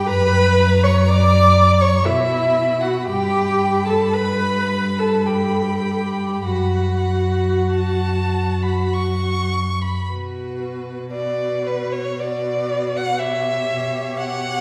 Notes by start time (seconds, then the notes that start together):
Already playing: G2
0.09 F#2 B4 A#5 B5
0.83 C#5 C#6
1.08 D5 D6
1.81 C#5 C#6
2.04 B2 E4 E5 B5
2.81 F#4 F#5
3.07 G2 G4 G5
3.85 A4 A5
4.13 B4 B5
4.99 A4 A5
5.26 G4 G5
5.35 A4
5.43 G4
5.54 A4
5.61 G4
5.71 A4
5.81 G4
5.91 A4
6.01 G4
6.46 F#2 F#4 F#5
7.72 A5
8.63 B5
8.93 C#6
9.81 B5
10.10 B2 F#4 B4
11.12 F#4 B4 D5
11.66 B4
11.92 C#5
12.18 F#4 B4 D5
12.97 F#5
13.19 G4 C#5 E5
14.16 F#5